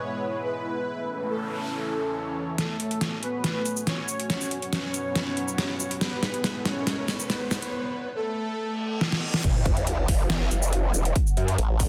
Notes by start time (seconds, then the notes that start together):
Already playing: G#3 B3 E4 B4 C#5
0.44 B4
0.87 A3 C#4, noise sweep
1.30 A4
1.73 E3 C#5
2.58 A3 F#4 A4 C#5 G#5, snare, closed hi-hat, riser
2.80 closed hi-hat
2.91 closed hi-hat
3.01 snare, closed hi-hat
3.23 B3 B4, closed hi-hat
3.44 snare, closed hi-hat
3.66 closed hi-hat, shaker
3.77 shaker
3.87 C#4 C#5, snare, closed hi-hat
4.08 shaker
4.20 closed hi-hat
4.30 F#3 B3 B4, snare, closed hi-hat
4.41 shaker
4.51 closed hi-hat
4.62 closed hi-hat
4.73 C#4 C#5, snare, closed hi-hat
4.94 closed hi-hat, shaker
5.16 snare, closed hi-hat
5.37 closed hi-hat
5.48 shaker
5.58 snare, closed hi-hat
5.80 shaker
5.91 closed hi-hat
6.01 G#3 B3 E4 B4, snare, closed hi-hat
6.23 snare, closed hi-hat
6.34 closed hi-hat
6.44 snare, closed hi-hat
6.65 C#4 C#5, snare, closed hi-hat
6.87 snare, closed hi-hat
7.08 snare, closed hi-hat, shaker
7.20 shaker
7.30 B3 B4, snare, closed hi-hat
7.51 snare, shaker
7.62 closed hi-hat
8.15 A3 A4
8.58 reverse cymbal
9.01 snare
9.12 snare
9.34 snare
9.44 F#1 F#3 C#4 C#5 F#5, kick, closed hi-hat, crash, sub drop
9.66 kick, closed hi-hat
9.77 closed hi-hat
9.87 closed hi-hat
10.08 F#1, kick, open hi-hat
10.30 snare, closed hi-hat
10.51 F#1, closed hi-hat, shaker
10.62 shaker
10.73 closed hi-hat
10.94 E1, shaker
11.05 closed hi-hat
11.16 kick, closed hi-hat
11.27 shaker
11.37 F#2, closed hi-hat
11.48 closed hi-hat
11.58 A1, closed hi-hat
11.80 kick, open hi-hat, shaker